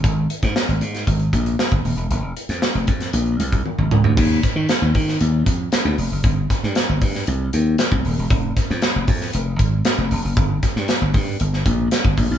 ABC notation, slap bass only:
X:1
M:4/4
L:1/16
Q:1/4=116
K:Eb
V:1 name="Slap bass" clef=bass
A,,,2 z A,, z A,,, A,,2 A,,,2 B,,,2 z G,,, E,,, _F,,, | F,,,2 z F,, z F,,, F,,2 B,,,2 C,,2 z A,,, _D,, =D,, | E,,2 z E, z E,, E,2 E,,2 F,,2 z D,, F,,, _G,,, | G,,,2 z G,, z G,,, G,,2 C,,2 E,,2 z C,, E,,, _F,,, |
F,,,2 z F,, z F,,, F,,2 F,,,2 A,,,2 z F,,, F,,, _G,,, | G,,,2 z G,, z G,,, G,,2 G,,,2 B,,,2 z G,,, B,,, _C,, |]